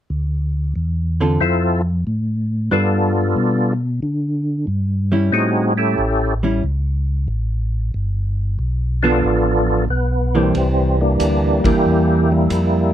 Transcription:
0.10 0.74 D2 medium
0.76 1.39 E2 medium
1.21 1.39 D3 medium
1.21 1.39 C4 medium
1.21 1.39 F4 medium
1.21 1.40 A4 medium
1.41 2.04 F2 medium
1.41 1.81 C4 medium
1.41 1.82 E4 medium
1.41 1.82 F4 medium
1.41 1.82 A4 medium
2.07 2.70 A2 medium
2.71 3.35 G2 medium
2.71 3.73 G3 soft
2.71 3.73 B3 medium
2.71 3.73 D4 soft
2.71 3.73 D4 medium
2.71 3.73 F4 soft
2.71 3.74 F4 medium
2.71 3.74 A4 medium
2.71 3.74 B4 medium
3.37 4.00 B2 medium
4.03 4.66 D3 medium
4.67 5.31 G2 medium
5.12 5.94 G3 soft
5.12 5.94 C#4 medium
5.12 5.94 E4 medium
5.32 5.96 A2 medium
5.32 5.73 C4 medium
5.32 5.73 D#4 medium
5.32 5.74 F#4 medium
5.32 5.74 G#4 medium
5.78 6.34 C#4 medium
5.78 6.34 E4 medium
5.78 6.34 G4 medium
5.78 6.35 A4 medium
5.98 6.62 A1 medium
6.43 6.61 G3 medium
6.43 6.62 C#4 medium
6.43 6.62 E4 medium
6.64 7.27 C#2 medium
7.28 7.92 A1 medium
7.94 8.57 G1 medium
8.59 9.22 B1 medium
9.03 9.85 F3 medium
9.03 9.85 B3 medium
9.03 9.86 B3 medium
9.03 9.85 D4 medium
9.03 9.86 D4 medium
9.03 9.85 F4 medium
9.03 9.85 A4 medium
9.24 9.87 A1 medium
9.89 10.52 B1 medium
9.89 10.36 B3 medium
10.35 10.53 E3 medium
10.35 11.62 E3 medium
10.35 11.00 G3 medium
10.35 10.53 A#3 medium
10.35 10.97 C4 medium
10.35 10.53 D4 medium
10.54 11.18 C2 medium
10.54 kick soft
10.54 ride medium
11.01 12.26 G3 medium
11.01 11.64 A#3 medium
11.01 11.61 D4 medium
11.19 11.61 D2 medium
11.19 kick soft
11.19 hi-hat pedal soft
11.19 ride medium
11.64 11.75 D2 soft
11.64 12.46 E3 medium
11.64 12.46 A#3 medium
11.64 12.30 A#3 medium
11.64 12.46 D4 medium
11.64 12.31 E4 medium
11.64 12.32 G4 medium
11.64 kick medium
11.64 ride medium
11.86 12.48 E2 medium
12.31 12.94 G3 medium
12.31 12.94 A#3 medium
12.31 12.94 E4 medium
12.50 12.94 F2 medium
12.50 kick soft
12.50 hi-hat pedal medium
12.50 ride medium

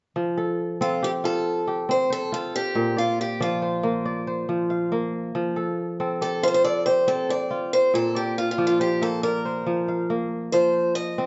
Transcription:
0.16 2.50 F3 medium
0.37 0.80 A4 medium
0.81 1.88 C4 medium
0.81 1.04 F4 medium
0.81 2.13 A4 medium
1.03 1.67 G4 medium
1.03 1.10 G4 medium
1.24 2.32 F4 medium
1.24 1.90 A4 medium
1.67 3.09 G4 medium
1.89 3.69 C4 medium
1.89 2.12 C5 medium
2.10 2.33 A4 medium
2.10 3.29 C5 medium
2.32 3.84 F4 medium
2.32 2.55 A4 medium
2.56 2.98 G4 medium
2.75 5.09 A#2 medium
2.97 3.20 F4 medium
2.97 3.40 D5 medium
3.21 3.42 G4 medium
3.40 4.48 F3 medium
3.40 5.10 F4 medium
3.40 4.05 D5 medium
3.62 4.27 C5 medium
3.83 4.91 A#3 medium
4.05 5.16 D5 medium
4.27 5.46 C5 medium
4.49 5.34 F3 medium
4.70 5.70 F5 medium
4.92 5.62 A#3 medium
5.35 7.69 F3 medium
5.56 6.00 A4 medium
6.00 7.07 C4 medium
6.00 6.64 A4 medium
6.21 6.86 G4 medium
6.21 6.44 A4 medium
6.43 7.50 F4 medium
6.43 6.47 C5 medium
6.48 6.53 C5 medium
6.54 6.64 C5 medium
6.64 8.00 A4 medium
6.64 6.85 D5 medium
6.86 8.27 G4 medium
6.86 7.08 C5 medium
7.08 8.88 C4 medium
7.08 7.30 A4 medium
7.29 8.48 C5 medium
7.29 7.73 D5 medium
7.50 9.02 F4 medium
7.73 7.95 C5 medium
7.94 10.28 A#2 medium
7.94 8.17 A4 medium
8.15 8.36 G4 medium
8.15 8.58 D5 medium
8.38 8.50 F4 medium
8.51 8.66 F4 medium
8.58 9.65 F3 medium
8.58 9.23 D5 medium
8.67 8.80 F4 medium
8.80 9.03 G4 medium
8.80 9.45 C5 medium
9.01 10.09 A#3 medium
9.01 9.22 A4 medium
9.23 10.27 A#4 medium
9.23 10.34 D5 medium
9.45 10.64 C5 medium
9.66 10.52 F3 medium
9.88 10.88 F5 medium
10.10 11.26 A#3 medium
10.52 11.26 F3 medium
10.52 10.95 C5 medium
10.95 11.26 D#5 medium
11.18 11.26 C4 medium

